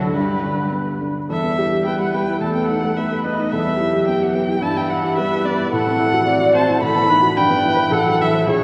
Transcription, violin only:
Already playing: F#4
0.15 G4
1.31 E5
1.86 G5
2.01 F#5
2.14 G5
2.41 A5
2.55 G5
2.68 F#5
2.97 E5
3.24 D#5
3.52 E5
4.07 G5
4.23 F#5
4.35 G5
4.62 A5
4.77 G5
4.90 F#5
5.17 E5
5.46 D5
5.73 F#5
6.56 A5
6.83 B5
7.37 G5
7.94 F#5
8.22 E5
8.49 C#5

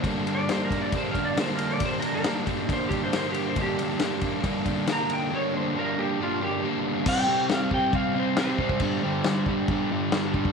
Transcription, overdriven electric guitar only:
0.03 G2 D3 G3 A#3 D4
0.26 G3 A#3 D4
0.49 D3 G3 A#3 D4
0.71 G3 A#3 D4
0.93 G2 D3 G3 A#3 D4
1.15 G3 A#3 D4
1.37 D3 G3 A#3 D4
1.81 G2 D3 G3 A#3 D4
2.03 G3 A#3 D4
2.24 D3 G3 A#3 D4
2.46 G3 A#3 D4
2.67 G2 D3 G3 A#3 D4
2.89 G3 A#3 D4
3.12 D3 G3 A#3 D4
3.57 G2 D3 G3 A#3 D4
3.79 G3 A#3 D4
4.01 D3 G3 A#3 D4
4.22 G3 A#3 D4
4.43 G2 D3 G3 A#3 D4
4.65 G3 A#3 D4
4.87 D3 G3 A#3 D4
5.31 G2 D3 G3 A#3 D4
5.53 G3 A#3 D4
5.76 D3 G3 A#3 D4
5.96 G3 A#3 D4
6.20 G2 D3 G3 A#3 D4
6.41 G3 A#3 D4
6.62 D3 G3 A#3 D4
7.06 C3 G3 C4
7.28 C3 G3 C4
7.50 C3 G3 C4
7.72 C3 G3 C4
7.92 C3 G3 C4
8.14 C3 G3 C4
8.36 C3 G3 C4
8.59 C3 G3 C4
8.81 G2 D3 G3
9.03 G2 D3 G3
9.25 G2 D3 G3
9.47 G2 D3 G3
9.70 G2 D3 G3
9.91 G2 D3 G3
10.13 G2 D3 G3
10.34 G2 D3 G3

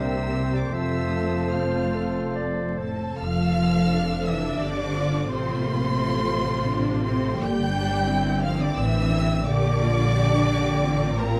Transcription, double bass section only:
Already playing: C2
0.73 F1
3.19 F1
4.60 G1
5.30 A1
7.41 G1
8.78 A1
9.47 A#1
10.82 A1

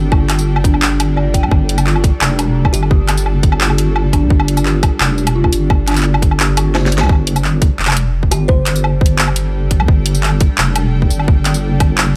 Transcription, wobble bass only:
Already playing: G1
1.43 D2
1.51 G1
2.21 F1
2.74 G1
4.22 D2
4.30 G1
5.00 F1
5.53 G1
7.01 D2
7.09 G1
7.79 F1
8.32 G1
9.80 D2
9.88 G1
10.58 F1
11.11 G1

